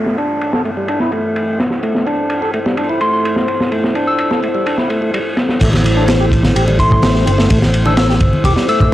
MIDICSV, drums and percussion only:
0, 0, Header, 1, 2, 480
1, 0, Start_track
1, 0, Key_signature, 0, "minor"
1, 0, Tempo, 472441
1, 1863, Time_signature, 4, 2, 24, 8
1, 9082, End_track
2, 0, Start_track
2, 0, Title_t, "Drums"
2, 65, Note_on_c, 9, 38, 36
2, 166, Note_off_c, 9, 38, 0
2, 183, Note_on_c, 9, 51, 63
2, 285, Note_off_c, 9, 51, 0
2, 420, Note_on_c, 9, 51, 73
2, 521, Note_off_c, 9, 51, 0
2, 540, Note_on_c, 9, 38, 46
2, 641, Note_off_c, 9, 38, 0
2, 662, Note_on_c, 9, 51, 63
2, 764, Note_off_c, 9, 51, 0
2, 896, Note_on_c, 9, 51, 81
2, 998, Note_off_c, 9, 51, 0
2, 1017, Note_on_c, 9, 38, 38
2, 1118, Note_off_c, 9, 38, 0
2, 1134, Note_on_c, 9, 51, 58
2, 1235, Note_off_c, 9, 51, 0
2, 1382, Note_on_c, 9, 51, 78
2, 1483, Note_off_c, 9, 51, 0
2, 1624, Note_on_c, 9, 38, 55
2, 1628, Note_on_c, 9, 51, 65
2, 1725, Note_off_c, 9, 38, 0
2, 1729, Note_off_c, 9, 51, 0
2, 1732, Note_on_c, 9, 38, 41
2, 1833, Note_off_c, 9, 38, 0
2, 1860, Note_on_c, 9, 51, 77
2, 1962, Note_off_c, 9, 51, 0
2, 1982, Note_on_c, 9, 38, 38
2, 2083, Note_off_c, 9, 38, 0
2, 2104, Note_on_c, 9, 51, 59
2, 2206, Note_off_c, 9, 51, 0
2, 2333, Note_on_c, 9, 51, 83
2, 2435, Note_off_c, 9, 51, 0
2, 2575, Note_on_c, 9, 51, 56
2, 2677, Note_off_c, 9, 51, 0
2, 2703, Note_on_c, 9, 38, 42
2, 2805, Note_off_c, 9, 38, 0
2, 2816, Note_on_c, 9, 51, 89
2, 2918, Note_off_c, 9, 51, 0
2, 3053, Note_on_c, 9, 51, 60
2, 3155, Note_off_c, 9, 51, 0
2, 3304, Note_on_c, 9, 51, 82
2, 3406, Note_off_c, 9, 51, 0
2, 3416, Note_on_c, 9, 38, 40
2, 3518, Note_off_c, 9, 38, 0
2, 3534, Note_on_c, 9, 51, 67
2, 3636, Note_off_c, 9, 51, 0
2, 3663, Note_on_c, 9, 38, 46
2, 3764, Note_off_c, 9, 38, 0
2, 3778, Note_on_c, 9, 51, 82
2, 3879, Note_off_c, 9, 51, 0
2, 3901, Note_on_c, 9, 38, 39
2, 4003, Note_off_c, 9, 38, 0
2, 4015, Note_on_c, 9, 51, 69
2, 4116, Note_off_c, 9, 51, 0
2, 4252, Note_on_c, 9, 51, 75
2, 4353, Note_off_c, 9, 51, 0
2, 4380, Note_on_c, 9, 38, 49
2, 4481, Note_off_c, 9, 38, 0
2, 4503, Note_on_c, 9, 51, 68
2, 4605, Note_off_c, 9, 51, 0
2, 4739, Note_on_c, 9, 51, 83
2, 4841, Note_off_c, 9, 51, 0
2, 4854, Note_on_c, 9, 38, 37
2, 4956, Note_off_c, 9, 38, 0
2, 4979, Note_on_c, 9, 51, 63
2, 5080, Note_off_c, 9, 51, 0
2, 5222, Note_on_c, 9, 51, 89
2, 5324, Note_off_c, 9, 51, 0
2, 5455, Note_on_c, 9, 38, 49
2, 5455, Note_on_c, 9, 51, 67
2, 5557, Note_off_c, 9, 38, 0
2, 5557, Note_off_c, 9, 51, 0
2, 5577, Note_on_c, 9, 38, 41
2, 5678, Note_off_c, 9, 38, 0
2, 5699, Note_on_c, 9, 51, 84
2, 5702, Note_on_c, 9, 36, 108
2, 5707, Note_on_c, 9, 49, 80
2, 5801, Note_off_c, 9, 51, 0
2, 5803, Note_off_c, 9, 36, 0
2, 5808, Note_off_c, 9, 49, 0
2, 5820, Note_on_c, 9, 63, 86
2, 5832, Note_on_c, 9, 38, 42
2, 5921, Note_off_c, 9, 63, 0
2, 5934, Note_off_c, 9, 38, 0
2, 5936, Note_on_c, 9, 62, 54
2, 5950, Note_on_c, 9, 51, 65
2, 6037, Note_off_c, 9, 62, 0
2, 6051, Note_off_c, 9, 51, 0
2, 6177, Note_on_c, 9, 62, 79
2, 6183, Note_on_c, 9, 38, 123
2, 6193, Note_on_c, 9, 51, 80
2, 6279, Note_off_c, 9, 62, 0
2, 6285, Note_off_c, 9, 38, 0
2, 6294, Note_off_c, 9, 51, 0
2, 6418, Note_on_c, 9, 36, 93
2, 6429, Note_on_c, 9, 51, 64
2, 6519, Note_off_c, 9, 36, 0
2, 6531, Note_off_c, 9, 51, 0
2, 6536, Note_on_c, 9, 38, 48
2, 6552, Note_on_c, 9, 62, 54
2, 6552, Note_on_c, 9, 63, 72
2, 6638, Note_off_c, 9, 38, 0
2, 6653, Note_off_c, 9, 62, 0
2, 6653, Note_off_c, 9, 63, 0
2, 6665, Note_on_c, 9, 51, 83
2, 6767, Note_off_c, 9, 51, 0
2, 6784, Note_on_c, 9, 62, 78
2, 6886, Note_off_c, 9, 62, 0
2, 6899, Note_on_c, 9, 36, 83
2, 6904, Note_on_c, 9, 51, 68
2, 7001, Note_off_c, 9, 36, 0
2, 7005, Note_off_c, 9, 51, 0
2, 7022, Note_on_c, 9, 64, 83
2, 7031, Note_on_c, 9, 36, 100
2, 7123, Note_off_c, 9, 64, 0
2, 7133, Note_off_c, 9, 36, 0
2, 7136, Note_on_c, 9, 63, 92
2, 7141, Note_on_c, 9, 51, 92
2, 7142, Note_on_c, 9, 38, 127
2, 7145, Note_on_c, 9, 62, 57
2, 7238, Note_off_c, 9, 63, 0
2, 7243, Note_off_c, 9, 38, 0
2, 7243, Note_off_c, 9, 51, 0
2, 7247, Note_off_c, 9, 62, 0
2, 7264, Note_on_c, 9, 38, 42
2, 7366, Note_off_c, 9, 38, 0
2, 7389, Note_on_c, 9, 51, 68
2, 7389, Note_on_c, 9, 62, 78
2, 7491, Note_off_c, 9, 51, 0
2, 7491, Note_off_c, 9, 62, 0
2, 7502, Note_on_c, 9, 38, 57
2, 7604, Note_off_c, 9, 38, 0
2, 7622, Note_on_c, 9, 51, 95
2, 7626, Note_on_c, 9, 36, 108
2, 7724, Note_off_c, 9, 51, 0
2, 7728, Note_off_c, 9, 36, 0
2, 7745, Note_on_c, 9, 38, 42
2, 7746, Note_on_c, 9, 63, 99
2, 7751, Note_on_c, 9, 62, 45
2, 7847, Note_off_c, 9, 38, 0
2, 7848, Note_off_c, 9, 63, 0
2, 7853, Note_off_c, 9, 62, 0
2, 7861, Note_on_c, 9, 51, 67
2, 7963, Note_off_c, 9, 51, 0
2, 7981, Note_on_c, 9, 62, 83
2, 8083, Note_off_c, 9, 62, 0
2, 8098, Note_on_c, 9, 51, 85
2, 8100, Note_on_c, 9, 38, 117
2, 8200, Note_off_c, 9, 51, 0
2, 8202, Note_off_c, 9, 38, 0
2, 8222, Note_on_c, 9, 38, 52
2, 8324, Note_off_c, 9, 38, 0
2, 8335, Note_on_c, 9, 51, 68
2, 8341, Note_on_c, 9, 36, 100
2, 8345, Note_on_c, 9, 62, 47
2, 8437, Note_off_c, 9, 51, 0
2, 8443, Note_off_c, 9, 36, 0
2, 8446, Note_off_c, 9, 62, 0
2, 8465, Note_on_c, 9, 63, 72
2, 8567, Note_off_c, 9, 63, 0
2, 8576, Note_on_c, 9, 36, 105
2, 8582, Note_on_c, 9, 51, 94
2, 8583, Note_on_c, 9, 62, 90
2, 8678, Note_off_c, 9, 36, 0
2, 8684, Note_off_c, 9, 51, 0
2, 8685, Note_off_c, 9, 62, 0
2, 8701, Note_on_c, 9, 38, 43
2, 8802, Note_off_c, 9, 38, 0
2, 8826, Note_on_c, 9, 51, 62
2, 8927, Note_off_c, 9, 51, 0
2, 8945, Note_on_c, 9, 36, 104
2, 8952, Note_on_c, 9, 62, 55
2, 8954, Note_on_c, 9, 64, 84
2, 9047, Note_off_c, 9, 36, 0
2, 9053, Note_off_c, 9, 62, 0
2, 9055, Note_off_c, 9, 64, 0
2, 9082, End_track
0, 0, End_of_file